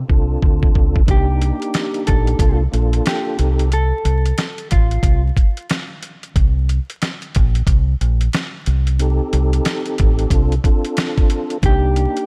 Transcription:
0.08 C2 C4 D4 F4 A4, kick
0.42 D2, kick
0.63 kick
0.75 C#2, kick
0.96 kick
1.07 C2 A#3 D4 D#4 G4, kick, closed hi-hat
1.11 G4
1.42 closed hi-hat
1.62 closed hi-hat
1.74 snare, closed hi-hat
1.94 closed hi-hat
2.07 A#1 A4, kick, closed hi-hat
2.27 closed hi-hat
2.39 C2 A#3 D4 F4 A4, kick, closed hi-hat
2.72 A#1 A#3 D4 F4 A4, closed hi-hat
2.93 closed hi-hat
3.06 G4, snare, closed hi-hat
3.37 C2 C4 D#4 G4 A4, closed hi-hat
3.59 closed hi-hat
3.72 A4, closed hi-hat
4.05 C2, closed hi-hat
4.26 closed hi-hat
4.38 snare, closed hi-hat
4.58 closed hi-hat
4.71 A1 F4, kick, closed hi-hat
4.91 closed hi-hat
5.03 C2, kick, closed hi-hat
5.37 kick, closed hi-hat
5.57 closed hi-hat
5.70 snare, closed hi-hat
6.03 closed hi-hat
6.23 closed hi-hat
6.36 C2, kick, closed hi-hat
6.69 closed hi-hat
6.90 closed hi-hat
7.02 snare, closed hi-hat
7.22 closed hi-hat
7.35 A#1, kick, closed hi-hat
7.55 closed hi-hat
7.67 C2, kick, closed hi-hat
8.01 A#1, closed hi-hat
8.21 closed hi-hat
8.33 snare, closed hi-hat
8.66 C2, closed hi-hat
8.87 closed hi-hat
8.99 C4 D#4 G4 A4, closed hi-hat
9.33 C2, closed hi-hat
9.53 closed hi-hat
9.65 snare, closed hi-hat
9.86 closed hi-hat
9.98 A1, kick, closed hi-hat
10.19 closed hi-hat
10.30 C2 C4 D4 F4 A4, kick, closed hi-hat
10.52 closed hi-hat
10.64 C4 D4 F4 A4, kick, closed hi-hat
10.85 closed hi-hat
10.97 snare, closed hi-hat
11.18 kick, closed hi-hat
11.30 closed hi-hat
11.50 closed hi-hat
11.62 C2 A#3 D4 D#4 G4, kick, closed hi-hat
11.96 closed hi-hat
12.17 closed hi-hat

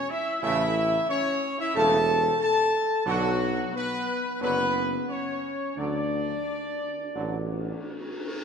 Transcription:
0.10 E4 E5
0.42 A1 C#3 A3 E4 E5
1.08 C#4 C#5
1.58 E4 E5
1.75 E1 C#3 A3 A4 A5
2.40 A4 A5
3.06 B1 D3 F#3 F#4
3.74 B3 B4
4.40 F#1 D3 F#3 B3 B4
5.08 C#4 C#5
5.76 D2 D3 F#3 D4 D5
7.15 A1 D3 F#3

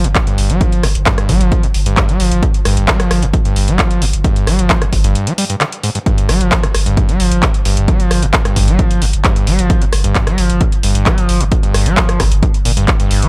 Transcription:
0.04 G1 G2, closed hi-hat
0.15 kick, clap, closed hi-hat
0.27 G2, closed hi-hat
0.38 G1, open hi-hat
0.50 G1 G3, closed hi-hat
0.61 F3, kick, closed hi-hat
0.72 closed hi-hat
0.83 G1 G2, cross-stick, open hi-hat
0.95 G1, closed hi-hat
1.06 G2, kick, clap, closed hi-hat
1.18 cross-stick, closed hi-hat
1.29 G1 G3, kick, open hi-hat
1.41 G1 F3, closed hi-hat
1.52 kick, closed hi-hat
1.63 G2, closed hi-hat
1.74 G1, open hi-hat
1.86 G1 G2, closed hi-hat
1.97 kick, clap, closed hi-hat
2.09 G3, closed hi-hat
2.20 G1 F3, open hi-hat
2.32 G1, closed hi-hat
2.43 G2, kick, closed hi-hat
2.54 closed hi-hat
2.65 G1 G2, cross-stick, open hi-hat
2.77 G1, closed hi-hat
2.88 G3, kick, clap, closed hi-hat
3.00 F3, cross-stick, closed hi-hat
3.11 G1, cross-stick, open hi-hat
3.22 G1 G2, closed hi-hat
3.34 kick, closed hi-hat
3.45 G2, closed hi-hat
3.56 G1, open hi-hat
3.68 G1 G3, closed hi-hat
3.79 F3, kick, clap, closed hi-hat
3.91 closed hi-hat
4.02 G1 G2, open hi-hat
4.13 G1, closed hi-hat
4.24 G2, kick, closed hi-hat
4.36 closed hi-hat
4.47 G1 G3, cross-stick, open hi-hat
4.59 G1 F3, closed hi-hat
4.70 kick, clap, closed hi-hat
4.82 G2, cross-stick, closed hi-hat
4.93 G1, kick, open hi-hat
5.04 G1 G2, closed hi-hat
5.15 closed hi-hat
5.27 G3, closed hi-hat
5.38 G3, open hi-hat
5.50 G2, closed hi-hat
5.61 D3, clap, closed hi-hat
5.72 closed hi-hat
5.83 G#2, open hi-hat
5.95 G2, closed hi-hat
6.06 G2, kick, closed hi-hat
6.18 closed hi-hat
6.29 G1 G3, cross-stick, open hi-hat
6.41 G1 F3, closed hi-hat
6.52 kick, clap, closed hi-hat
6.63 G2, cross-stick, closed hi-hat
6.75 G1, cross-stick, open hi-hat
6.86 G1 G2, closed hi-hat
6.97 kick, closed hi-hat
7.09 G3, closed hi-hat
7.20 G1 F3, open hi-hat
7.32 G1, closed hi-hat
7.43 G2, kick, clap, closed hi-hat
7.54 closed hi-hat
7.65 G1 G2, open hi-hat
7.77 G1, closed hi-hat
7.88 G3, kick, closed hi-hat
8.00 F3, closed hi-hat
8.11 G1, cross-stick, open hi-hat
8.22 G1 G2, closed hi-hat
8.34 kick, clap, closed hi-hat
8.45 G2, cross-stick, closed hi-hat
8.56 G1, kick, open hi-hat
8.68 G1 G3, closed hi-hat
8.79 F3, kick, closed hi-hat
8.91 closed hi-hat
9.02 G1 G2, open hi-hat
9.13 G1, closed hi-hat
9.24 G2, kick, clap, closed hi-hat
9.36 closed hi-hat
9.47 G1 G3, open hi-hat
9.59 G1 F3, closed hi-hat
9.70 kick, closed hi-hat
9.81 G2, closed hi-hat
9.93 G1, cross-stick, open hi-hat
10.04 G1 G2, closed hi-hat
10.15 kick, clap, closed hi-hat
10.27 G3, cross-stick, closed hi-hat
10.38 G1 F3, open hi-hat
10.50 G1, closed hi-hat
10.61 G2, kick, closed hi-hat
10.72 closed hi-hat
10.83 G1 G2, open hi-hat
10.95 G1, closed hi-hat
11.06 G3, kick, clap, closed hi-hat
11.18 F3, closed hi-hat
11.29 G1, open hi-hat
11.40 G1 G2, closed hi-hat
11.52 kick, closed hi-hat
11.63 G2, closed hi-hat
11.74 G1, cross-stick, open hi-hat
11.86 G1 G3, closed hi-hat
11.97 F3, kick, clap, closed hi-hat
12.09 cross-stick, closed hi-hat
12.20 G1 G2, kick, cross-stick, open hi-hat
12.32 G1, closed hi-hat
12.42 G2, kick, closed hi-hat
12.54 closed hi-hat
12.65 G1 A#2, open hi-hat
12.77 G1 G2, closed hi-hat
12.88 kick, clap, closed hi-hat
13.00 G2, closed hi-hat
13.11 G1, open hi-hat
13.22 G1 G3, closed hi-hat

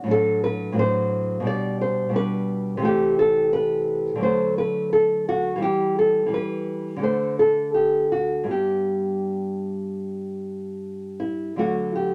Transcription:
0.04 A2 F#3
0.08 D4 A4
0.44 B4
0.72 A2 F#3
0.77 D4 C5
1.40 B2 G3
1.45 D4 D5
1.81 C5
2.09 B2 G3
2.14 D4 B4
2.77 C3 E3
2.82 A3 G4
3.19 A4
3.53 B4
4.15 D3 F#3
4.21 A3 C5
4.58 B4
4.93 A4
5.29 F#4
5.56 E3 G3
5.62 G4
5.99 A4
6.26 E3 G3
6.34 B4
6.96 D3 F#3
7.02 A3 C5
7.39 A4
7.74 G4
8.12 F#4
8.44 G2 G3
8.49 B3 G4
11.20 E4
11.56 D3 F#3 A3 F#4
11.95 G4

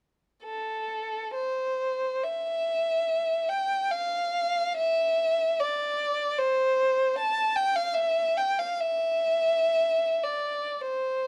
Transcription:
0.44 A4
1.34 C5
2.23 E5
3.48 G5
3.91 F5
4.77 E5
5.60 D5
6.38 C5
7.18 A5
7.56 G5
7.76 F5
7.94 E5
8.37 G5
8.59 F5
8.81 E5
10.24 D5
10.81 C5

